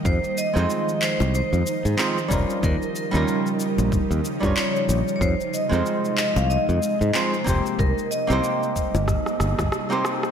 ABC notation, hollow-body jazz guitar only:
X:1
M:4/4
L:1/16
Q:"Swing 16ths" 1/4=93
K:Fm
V:1 name="Hollow-body jazz guitar"
z3 [A,CEFc]8- [A,CEFc] [A,CEFc] z [G,DEFB]2- | [G,DEFB]3 [G,DEFB]8 [G,DEFd]4- [G,DEFd] | z3 [A,CEFc]8- [A,CEFc] [A,CEFc] z [B,CEGc]2- | [B,CEGc]3 [B,CEGc]8 z2 [B,CEGc]3 |]